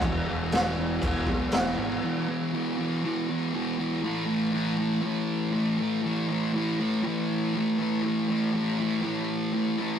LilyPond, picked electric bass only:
\new Staff \with { instrumentName = "Picked electric bass" } { \clef bass \time 4/4 \key a \major \tempo 4 = 120 e,,8 e,,8 e,,8 e,,8 e,,8 b,,8 e,,8 gis,,8 | r1 | r1 | r1 |
r1 | }